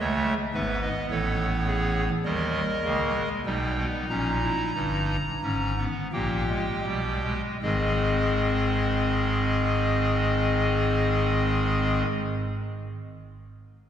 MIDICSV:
0, 0, Header, 1, 2, 480
1, 0, Start_track
1, 0, Tempo, 1100917
1, 480, Tempo, 1153846
1, 959, Time_signature, 4, 2, 24, 8
1, 960, Tempo, 1207243
1, 1440, Tempo, 1282051
1, 1920, Tempo, 1379310
1, 2400, Tempo, 1500000
1, 2880, Tempo, 1554404
1, 4817, End_track
2, 0, Start_track
2, 0, Title_t, "Pipe organ"
2, 0, Program_c, 0, 19
2, 0, Note_on_c, 0, 37, 89
2, 0, Note_on_c, 0, 49, 89
2, 0, Note_on_c, 0, 57, 85
2, 0, Note_on_c, 0, 73, 107
2, 1, Note_on_c, 0, 76, 92
2, 147, Note_off_c, 0, 37, 0
2, 147, Note_off_c, 0, 49, 0
2, 147, Note_off_c, 0, 57, 0
2, 147, Note_off_c, 0, 73, 0
2, 148, Note_off_c, 0, 76, 0
2, 236, Note_on_c, 0, 32, 84
2, 237, Note_on_c, 0, 44, 78
2, 237, Note_on_c, 0, 71, 87
2, 237, Note_on_c, 0, 76, 81
2, 238, Note_on_c, 0, 59, 77
2, 341, Note_off_c, 0, 76, 0
2, 357, Note_on_c, 0, 75, 80
2, 387, Note_off_c, 0, 32, 0
2, 387, Note_off_c, 0, 44, 0
2, 387, Note_off_c, 0, 71, 0
2, 462, Note_off_c, 0, 75, 0
2, 481, Note_on_c, 0, 33, 79
2, 481, Note_on_c, 0, 45, 78
2, 481, Note_on_c, 0, 69, 87
2, 482, Note_on_c, 0, 73, 78
2, 628, Note_off_c, 0, 69, 0
2, 718, Note_on_c, 0, 68, 90
2, 860, Note_off_c, 0, 59, 0
2, 868, Note_off_c, 0, 68, 0
2, 893, Note_off_c, 0, 33, 0
2, 893, Note_off_c, 0, 45, 0
2, 893, Note_off_c, 0, 73, 0
2, 958, Note_on_c, 0, 51, 94
2, 958, Note_on_c, 0, 70, 84
2, 958, Note_on_c, 0, 75, 97
2, 959, Note_on_c, 0, 39, 91
2, 959, Note_on_c, 0, 55, 90
2, 1105, Note_off_c, 0, 51, 0
2, 1106, Note_off_c, 0, 39, 0
2, 1106, Note_off_c, 0, 55, 0
2, 1196, Note_on_c, 0, 37, 94
2, 1196, Note_on_c, 0, 49, 89
2, 1197, Note_on_c, 0, 58, 81
2, 1300, Note_off_c, 0, 58, 0
2, 1315, Note_on_c, 0, 56, 78
2, 1347, Note_off_c, 0, 37, 0
2, 1347, Note_off_c, 0, 49, 0
2, 1371, Note_off_c, 0, 75, 0
2, 1372, Note_off_c, 0, 70, 0
2, 1421, Note_off_c, 0, 56, 0
2, 1438, Note_on_c, 0, 47, 84
2, 1439, Note_on_c, 0, 35, 80
2, 1439, Note_on_c, 0, 55, 76
2, 1439, Note_on_c, 0, 79, 75
2, 1440, Note_on_c, 0, 63, 76
2, 1540, Note_off_c, 0, 55, 0
2, 1560, Note_on_c, 0, 59, 76
2, 1585, Note_off_c, 0, 47, 0
2, 1586, Note_off_c, 0, 35, 0
2, 1586, Note_off_c, 0, 79, 0
2, 1661, Note_off_c, 0, 59, 0
2, 1677, Note_on_c, 0, 34, 73
2, 1677, Note_on_c, 0, 46, 70
2, 1677, Note_on_c, 0, 82, 78
2, 1679, Note_on_c, 0, 61, 72
2, 1781, Note_off_c, 0, 61, 0
2, 1800, Note_on_c, 0, 64, 75
2, 1828, Note_off_c, 0, 34, 0
2, 1828, Note_off_c, 0, 46, 0
2, 1904, Note_off_c, 0, 64, 0
2, 1914, Note_off_c, 0, 63, 0
2, 1921, Note_on_c, 0, 63, 77
2, 1922, Note_on_c, 0, 31, 86
2, 1922, Note_on_c, 0, 43, 80
2, 2066, Note_off_c, 0, 63, 0
2, 2067, Note_off_c, 0, 31, 0
2, 2067, Note_off_c, 0, 43, 0
2, 2157, Note_on_c, 0, 44, 68
2, 2157, Note_on_c, 0, 61, 68
2, 2158, Note_on_c, 0, 32, 69
2, 2260, Note_off_c, 0, 61, 0
2, 2277, Note_on_c, 0, 59, 76
2, 2301, Note_off_c, 0, 82, 0
2, 2308, Note_off_c, 0, 44, 0
2, 2309, Note_off_c, 0, 32, 0
2, 2383, Note_off_c, 0, 59, 0
2, 2401, Note_on_c, 0, 46, 74
2, 2401, Note_on_c, 0, 58, 68
2, 2401, Note_on_c, 0, 79, 77
2, 2402, Note_on_c, 0, 34, 71
2, 2403, Note_on_c, 0, 67, 65
2, 2500, Note_off_c, 0, 58, 0
2, 2518, Note_on_c, 0, 56, 71
2, 2546, Note_off_c, 0, 46, 0
2, 2547, Note_off_c, 0, 34, 0
2, 2619, Note_off_c, 0, 56, 0
2, 2635, Note_on_c, 0, 47, 68
2, 2635, Note_on_c, 0, 55, 66
2, 2637, Note_on_c, 0, 35, 66
2, 2739, Note_off_c, 0, 55, 0
2, 2758, Note_on_c, 0, 56, 65
2, 2787, Note_off_c, 0, 47, 0
2, 2788, Note_off_c, 0, 35, 0
2, 2813, Note_off_c, 0, 79, 0
2, 2814, Note_off_c, 0, 67, 0
2, 2863, Note_off_c, 0, 56, 0
2, 2879, Note_on_c, 0, 75, 70
2, 2880, Note_on_c, 0, 32, 82
2, 2880, Note_on_c, 0, 44, 74
2, 2880, Note_on_c, 0, 60, 74
2, 2881, Note_on_c, 0, 68, 75
2, 2889, Note_on_c, 0, 51, 65
2, 2889, Note_on_c, 0, 56, 65
2, 4240, Note_off_c, 0, 32, 0
2, 4240, Note_off_c, 0, 75, 0
2, 4241, Note_off_c, 0, 44, 0
2, 4241, Note_off_c, 0, 60, 0
2, 4242, Note_off_c, 0, 68, 0
2, 4249, Note_off_c, 0, 51, 0
2, 4250, Note_off_c, 0, 56, 0
2, 4817, End_track
0, 0, End_of_file